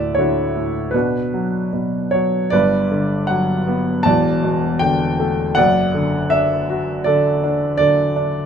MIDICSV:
0, 0, Header, 1, 2, 480
1, 0, Start_track
1, 0, Tempo, 775194
1, 1565, Time_signature, 4, 2, 24, 8
1, 2513, Tempo, 751880
1, 4433, Tempo, 723764
1, 5356, End_track
2, 0, Start_track
2, 0, Title_t, "Grand piano"
2, 0, Program_c, 0, 0
2, 0, Control_c, 0, 64, 127
2, 0, Note_on_c, 0, 38, 50
2, 0, Note_on_c, 0, 45, 42
2, 0, Note_on_c, 0, 69, 54
2, 0, Note_on_c, 0, 74, 65
2, 0, Note_on_c, 0, 76, 80
2, 90, Note_on_c, 0, 73, 65
2, 107, Note_off_c, 0, 74, 0
2, 112, Note_on_c, 0, 50, 42
2, 117, Note_on_c, 0, 64, 46
2, 118, Note_on_c, 0, 66, 45
2, 337, Note_off_c, 0, 45, 0
2, 346, Note_on_c, 0, 45, 41
2, 554, Note_off_c, 0, 38, 0
2, 559, Note_off_c, 0, 69, 0
2, 560, Note_off_c, 0, 64, 0
2, 560, Note_off_c, 0, 66, 0
2, 562, Note_on_c, 0, 71, 51
2, 567, Note_off_c, 0, 50, 0
2, 575, Note_off_c, 0, 45, 0
2, 583, Note_on_c, 0, 47, 54
2, 585, Note_off_c, 0, 73, 0
2, 585, Note_on_c, 0, 66, 35
2, 586, Note_on_c, 0, 62, 37
2, 588, Control_c, 0, 64, 0
2, 593, Note_off_c, 0, 76, 0
2, 703, Control_c, 0, 64, 127
2, 825, Note_on_c, 0, 54, 38
2, 1061, Note_off_c, 0, 47, 0
2, 1070, Note_on_c, 0, 47, 39
2, 1288, Note_off_c, 0, 71, 0
2, 1307, Note_on_c, 0, 73, 65
2, 1309, Note_off_c, 0, 54, 0
2, 1319, Note_on_c, 0, 54, 38
2, 1542, Note_off_c, 0, 66, 0
2, 1543, Note_off_c, 0, 62, 0
2, 1549, Note_off_c, 0, 47, 0
2, 1550, Note_on_c, 0, 74, 81
2, 1556, Note_off_c, 0, 54, 0
2, 1563, Note_on_c, 0, 31, 48
2, 1564, Note_off_c, 0, 73, 0
2, 1564, Note_on_c, 0, 43, 51
2, 1564, Note_on_c, 0, 71, 54
2, 1572, Control_c, 0, 64, 0
2, 1671, Control_c, 0, 64, 127
2, 1801, Note_on_c, 0, 50, 43
2, 2010, Note_off_c, 0, 74, 0
2, 2025, Note_on_c, 0, 78, 73
2, 2043, Note_on_c, 0, 54, 48
2, 2275, Note_on_c, 0, 59, 46
2, 2479, Note_off_c, 0, 78, 0
2, 2486, Note_off_c, 0, 31, 0
2, 2487, Note_off_c, 0, 43, 0
2, 2487, Note_off_c, 0, 71, 0
2, 2489, Note_off_c, 0, 50, 0
2, 2495, Note_on_c, 0, 81, 80
2, 2498, Note_off_c, 0, 54, 0
2, 2503, Note_off_c, 0, 59, 0
2, 2509, Note_on_c, 0, 74, 60
2, 2511, Note_on_c, 0, 28, 56
2, 2512, Note_on_c, 0, 40, 63
2, 2520, Control_c, 0, 64, 0
2, 2628, Control_c, 0, 64, 127
2, 2753, Note_on_c, 0, 47, 50
2, 2983, Note_on_c, 0, 79, 92
2, 2995, Note_on_c, 0, 50, 48
2, 2999, Note_off_c, 0, 81, 0
2, 3237, Note_on_c, 0, 57, 46
2, 3446, Note_off_c, 0, 74, 0
2, 3447, Note_off_c, 0, 28, 0
2, 3448, Note_off_c, 0, 40, 0
2, 3452, Note_off_c, 0, 47, 0
2, 3460, Note_off_c, 0, 50, 0
2, 3464, Note_on_c, 0, 78, 95
2, 3467, Note_off_c, 0, 57, 0
2, 3473, Note_on_c, 0, 74, 66
2, 3479, Note_on_c, 0, 30, 55
2, 3479, Note_on_c, 0, 42, 60
2, 3481, Control_c, 0, 64, 0
2, 3482, Note_off_c, 0, 79, 0
2, 3582, Control_c, 0, 64, 127
2, 3717, Note_on_c, 0, 50, 50
2, 3923, Note_off_c, 0, 78, 0
2, 3944, Note_on_c, 0, 76, 81
2, 3958, Note_on_c, 0, 62, 52
2, 4197, Note_on_c, 0, 66, 54
2, 4400, Note_off_c, 0, 76, 0
2, 4405, Note_off_c, 0, 74, 0
2, 4419, Note_on_c, 0, 74, 76
2, 4423, Note_off_c, 0, 50, 0
2, 4429, Note_on_c, 0, 69, 51
2, 4433, Note_on_c, 0, 50, 53
2, 4668, Note_off_c, 0, 62, 0
2, 4678, Note_on_c, 0, 62, 54
2, 4881, Note_off_c, 0, 74, 0
2, 4903, Note_on_c, 0, 74, 90
2, 4911, Note_off_c, 0, 50, 0
2, 4921, Note_on_c, 0, 50, 54
2, 5127, Note_off_c, 0, 66, 0
2, 5149, Note_off_c, 0, 62, 0
2, 5159, Note_on_c, 0, 62, 51
2, 5241, Note_off_c, 0, 74, 0
2, 5356, Note_off_c, 0, 30, 0
2, 5356, Note_off_c, 0, 42, 0
2, 5356, Note_off_c, 0, 50, 0
2, 5356, Note_off_c, 0, 62, 0
2, 5356, Note_off_c, 0, 69, 0
2, 5356, End_track
0, 0, End_of_file